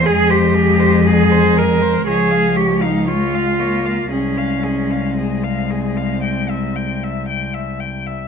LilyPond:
<<
  \new Staff \with { instrumentName = "Cello" } { \time 4/4 \key f \minor \tempo 4 = 57 aes'16 c''16 aes'16 c''16 aes'16 c''16 aes'16 c''16 des''16 f''16 des''16 f''16 des''16 f''16 des''16 f''16 | aes'16 f''16 aes'16 f''16 aes'16 f''16 aes'16 f''16 g''16 e''16 g''16 e''16 g''16 e''16 g''16 e''16 | }
  \new Staff \with { instrumentName = "Cello" } { \time 4/4 \key f \minor aes'16 g'8. aes'8 bes'8 aes'8 g'16 ees'16 f'4 | des'4 c'2~ c'8 r8 | }
  \new Staff \with { instrumentName = "Cello" } { \clef bass \time 4/4 \key f \minor aes2 f4 aes8 bes8 | aes2.~ aes8 r8 | }
  \new Staff \with { instrumentName = "Cello" } { \clef bass \time 4/4 \key f \minor f,2 des,2 | c,1 | }
>>